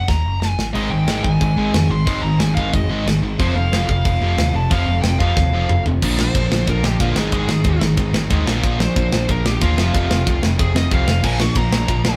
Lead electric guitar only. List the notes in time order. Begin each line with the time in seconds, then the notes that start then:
0.08 A#5
0.40 G#5
0.73 D#5
0.90 G5
1.24 G#5
1.91 C6
2.07 C6
2.23 A#5
2.39 G#5
2.55 F5
2.73 D#5
3.40 C5
3.55 F5
3.90 F5
4.56 A5
4.71 F5
5.02 G5
5.20 F5
6.20 C5
6.69 A#4
6.86 G4
7.01 F4
7.17 G#4
8.82 C5
9.31 A#4
9.46 G4
9.62 F4
9.80 F4
10.60 G#4
10.76 D#5
10.93 F5
11.25 G#5
11.40 C#6
11.58 A#5